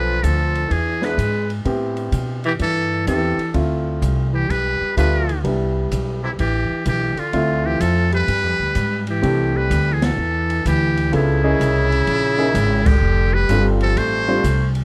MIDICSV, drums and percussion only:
0, 0, Header, 1, 2, 480
1, 0, Start_track
1, 0, Key_signature, 0, "major"
1, 0, Tempo, 473560
1, 1670, Time_signature, 4, 2, 24, 8
1, 15042, End_track
2, 0, Start_track
2, 0, Title_t, "Drums"
2, 237, Note_on_c, 9, 36, 18
2, 240, Note_on_c, 9, 44, 49
2, 240, Note_on_c, 9, 51, 67
2, 339, Note_off_c, 9, 36, 0
2, 342, Note_off_c, 9, 44, 0
2, 342, Note_off_c, 9, 51, 0
2, 560, Note_on_c, 9, 51, 42
2, 662, Note_off_c, 9, 51, 0
2, 717, Note_on_c, 9, 36, 17
2, 719, Note_on_c, 9, 51, 53
2, 818, Note_off_c, 9, 36, 0
2, 820, Note_off_c, 9, 51, 0
2, 1035, Note_on_c, 9, 38, 47
2, 1136, Note_off_c, 9, 38, 0
2, 1197, Note_on_c, 9, 36, 20
2, 1202, Note_on_c, 9, 44, 49
2, 1202, Note_on_c, 9, 51, 57
2, 1298, Note_off_c, 9, 36, 0
2, 1303, Note_off_c, 9, 44, 0
2, 1303, Note_off_c, 9, 51, 0
2, 1519, Note_on_c, 9, 51, 44
2, 1621, Note_off_c, 9, 51, 0
2, 1675, Note_on_c, 9, 36, 17
2, 1676, Note_on_c, 9, 51, 52
2, 1777, Note_off_c, 9, 36, 0
2, 1778, Note_off_c, 9, 51, 0
2, 1993, Note_on_c, 9, 51, 43
2, 2094, Note_off_c, 9, 51, 0
2, 2151, Note_on_c, 9, 44, 51
2, 2151, Note_on_c, 9, 51, 62
2, 2153, Note_on_c, 9, 36, 23
2, 2252, Note_off_c, 9, 44, 0
2, 2252, Note_off_c, 9, 51, 0
2, 2254, Note_off_c, 9, 36, 0
2, 2472, Note_on_c, 9, 51, 41
2, 2573, Note_off_c, 9, 51, 0
2, 2630, Note_on_c, 9, 51, 58
2, 2632, Note_on_c, 9, 36, 23
2, 2731, Note_off_c, 9, 51, 0
2, 2733, Note_off_c, 9, 36, 0
2, 3113, Note_on_c, 9, 36, 17
2, 3114, Note_on_c, 9, 44, 47
2, 3114, Note_on_c, 9, 51, 64
2, 3214, Note_off_c, 9, 36, 0
2, 3216, Note_off_c, 9, 44, 0
2, 3216, Note_off_c, 9, 51, 0
2, 3436, Note_on_c, 9, 51, 44
2, 3538, Note_off_c, 9, 51, 0
2, 3590, Note_on_c, 9, 51, 56
2, 3591, Note_on_c, 9, 36, 25
2, 3691, Note_off_c, 9, 51, 0
2, 3692, Note_off_c, 9, 36, 0
2, 4075, Note_on_c, 9, 36, 24
2, 4077, Note_on_c, 9, 44, 57
2, 4077, Note_on_c, 9, 51, 59
2, 4176, Note_off_c, 9, 36, 0
2, 4179, Note_off_c, 9, 44, 0
2, 4179, Note_off_c, 9, 51, 0
2, 4556, Note_on_c, 9, 36, 22
2, 4563, Note_on_c, 9, 51, 56
2, 4658, Note_off_c, 9, 36, 0
2, 4664, Note_off_c, 9, 51, 0
2, 5038, Note_on_c, 9, 36, 23
2, 5042, Note_on_c, 9, 44, 57
2, 5042, Note_on_c, 9, 51, 62
2, 5140, Note_off_c, 9, 36, 0
2, 5144, Note_off_c, 9, 44, 0
2, 5144, Note_off_c, 9, 51, 0
2, 5363, Note_on_c, 9, 51, 43
2, 5464, Note_off_c, 9, 51, 0
2, 5518, Note_on_c, 9, 36, 25
2, 5520, Note_on_c, 9, 51, 54
2, 5619, Note_off_c, 9, 36, 0
2, 5621, Note_off_c, 9, 51, 0
2, 5996, Note_on_c, 9, 36, 21
2, 5996, Note_on_c, 9, 44, 53
2, 5996, Note_on_c, 9, 51, 64
2, 6097, Note_off_c, 9, 44, 0
2, 6097, Note_off_c, 9, 51, 0
2, 6098, Note_off_c, 9, 36, 0
2, 6476, Note_on_c, 9, 36, 24
2, 6476, Note_on_c, 9, 51, 58
2, 6577, Note_off_c, 9, 51, 0
2, 6578, Note_off_c, 9, 36, 0
2, 6948, Note_on_c, 9, 44, 51
2, 6948, Note_on_c, 9, 51, 66
2, 6953, Note_on_c, 9, 36, 18
2, 7049, Note_off_c, 9, 44, 0
2, 7049, Note_off_c, 9, 51, 0
2, 7055, Note_off_c, 9, 36, 0
2, 7270, Note_on_c, 9, 51, 45
2, 7371, Note_off_c, 9, 51, 0
2, 7431, Note_on_c, 9, 51, 53
2, 7433, Note_on_c, 9, 36, 17
2, 7532, Note_off_c, 9, 51, 0
2, 7534, Note_off_c, 9, 36, 0
2, 7911, Note_on_c, 9, 44, 53
2, 7911, Note_on_c, 9, 51, 66
2, 7913, Note_on_c, 9, 36, 18
2, 8013, Note_off_c, 9, 44, 0
2, 8013, Note_off_c, 9, 51, 0
2, 8014, Note_off_c, 9, 36, 0
2, 8234, Note_on_c, 9, 51, 44
2, 8335, Note_off_c, 9, 51, 0
2, 8393, Note_on_c, 9, 36, 19
2, 8393, Note_on_c, 9, 51, 61
2, 8495, Note_off_c, 9, 36, 0
2, 8495, Note_off_c, 9, 51, 0
2, 8869, Note_on_c, 9, 44, 47
2, 8869, Note_on_c, 9, 51, 61
2, 8874, Note_on_c, 9, 36, 24
2, 8971, Note_off_c, 9, 44, 0
2, 8971, Note_off_c, 9, 51, 0
2, 8975, Note_off_c, 9, 36, 0
2, 9191, Note_on_c, 9, 51, 46
2, 9293, Note_off_c, 9, 51, 0
2, 9356, Note_on_c, 9, 36, 19
2, 9359, Note_on_c, 9, 51, 58
2, 9457, Note_off_c, 9, 36, 0
2, 9460, Note_off_c, 9, 51, 0
2, 9839, Note_on_c, 9, 36, 23
2, 9840, Note_on_c, 9, 44, 52
2, 9840, Note_on_c, 9, 51, 65
2, 9940, Note_off_c, 9, 36, 0
2, 9942, Note_off_c, 9, 44, 0
2, 9942, Note_off_c, 9, 51, 0
2, 10158, Note_on_c, 9, 38, 80
2, 10158, Note_on_c, 9, 51, 68
2, 10259, Note_off_c, 9, 38, 0
2, 10259, Note_off_c, 9, 51, 0
2, 10641, Note_on_c, 9, 51, 50
2, 10742, Note_off_c, 9, 51, 0
2, 10799, Note_on_c, 9, 36, 21
2, 10801, Note_on_c, 9, 44, 57
2, 10801, Note_on_c, 9, 51, 67
2, 10901, Note_off_c, 9, 36, 0
2, 10903, Note_off_c, 9, 44, 0
2, 10903, Note_off_c, 9, 51, 0
2, 11123, Note_on_c, 9, 51, 50
2, 11224, Note_off_c, 9, 51, 0
2, 11280, Note_on_c, 9, 36, 19
2, 11280, Note_on_c, 9, 51, 55
2, 11381, Note_off_c, 9, 36, 0
2, 11381, Note_off_c, 9, 51, 0
2, 11760, Note_on_c, 9, 36, 19
2, 11766, Note_on_c, 9, 44, 57
2, 11766, Note_on_c, 9, 51, 63
2, 11861, Note_off_c, 9, 36, 0
2, 11867, Note_off_c, 9, 44, 0
2, 11867, Note_off_c, 9, 51, 0
2, 12084, Note_on_c, 9, 51, 46
2, 12185, Note_off_c, 9, 51, 0
2, 12235, Note_on_c, 9, 51, 61
2, 12238, Note_on_c, 9, 36, 25
2, 12337, Note_off_c, 9, 51, 0
2, 12339, Note_off_c, 9, 36, 0
2, 12718, Note_on_c, 9, 36, 16
2, 12719, Note_on_c, 9, 44, 54
2, 12719, Note_on_c, 9, 51, 74
2, 12819, Note_off_c, 9, 36, 0
2, 12820, Note_off_c, 9, 44, 0
2, 12820, Note_off_c, 9, 51, 0
2, 13035, Note_on_c, 9, 49, 81
2, 13037, Note_on_c, 9, 36, 90
2, 13136, Note_off_c, 9, 49, 0
2, 13138, Note_off_c, 9, 36, 0
2, 13673, Note_on_c, 9, 44, 57
2, 13673, Note_on_c, 9, 51, 71
2, 13677, Note_on_c, 9, 36, 20
2, 13774, Note_off_c, 9, 44, 0
2, 13774, Note_off_c, 9, 51, 0
2, 13778, Note_off_c, 9, 36, 0
2, 13993, Note_on_c, 9, 51, 47
2, 14094, Note_off_c, 9, 51, 0
2, 14158, Note_on_c, 9, 36, 29
2, 14158, Note_on_c, 9, 51, 65
2, 14259, Note_off_c, 9, 36, 0
2, 14260, Note_off_c, 9, 51, 0
2, 14637, Note_on_c, 9, 36, 23
2, 14639, Note_on_c, 9, 44, 61
2, 14639, Note_on_c, 9, 51, 72
2, 14739, Note_off_c, 9, 36, 0
2, 14741, Note_off_c, 9, 44, 0
2, 14741, Note_off_c, 9, 51, 0
2, 14950, Note_on_c, 9, 51, 49
2, 15042, Note_off_c, 9, 51, 0
2, 15042, End_track
0, 0, End_of_file